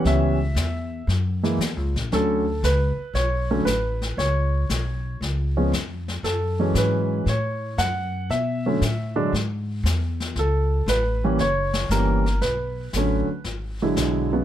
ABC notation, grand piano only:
X:1
M:4/4
L:1/8
Q:"Swing" 1/4=116
K:F#m
V:1 name="Grand piano"
e4 z4 | A2 B2 c2 B2 | c4 z4 | A2 B2 c2 f2 |
e4 z4 | A2 B2 c2 ^A2 | B4 z4 |]
V:2 name="Grand piano" clef=bass
[E,=G,B,C] z4 [E,^G,^A,E] z2 | [D,F,A,C] z4 [D,F,A,C] z2 | z4 z [^E,G,B,C] z2 | z [E,F,G,C]3 z4 |
z [D,F,A,C] z [D,F,G,D] z4 | z3 [E,=G,_B,C] z2 [E,G,^A,C] z | z2 [D,F,A,C] z2 [D,F,G,E]2 [C,F,G,B,] |]